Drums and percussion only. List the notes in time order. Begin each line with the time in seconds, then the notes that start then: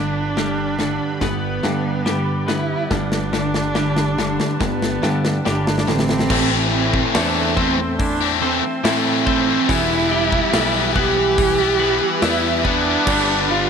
0.37 snare
0.79 snare
1.21 kick, snare
1.63 snare
2.06 snare
2.48 snare
2.91 kick, snare
3.12 snare
3.33 snare
3.54 snare
3.75 snare
3.96 snare
4.18 snare
4.40 snare
4.61 kick, snare
4.82 snare
5.03 snare
5.25 snare
5.46 snare
5.67 snare
5.78 snare
5.88 snare
5.99 snare
6.09 snare
6.19 snare
6.30 kick, crash
6.94 kick
7.15 snare, open hi-hat
7.57 kick
8.00 kick, open hi-hat
8.85 snare, open hi-hat
9.27 kick
9.69 kick, open hi-hat
10.32 kick
10.54 snare, open hi-hat
10.96 kick
11.38 kick, open hi-hat
12.22 snare, open hi-hat
12.65 kick
13.07 kick, crash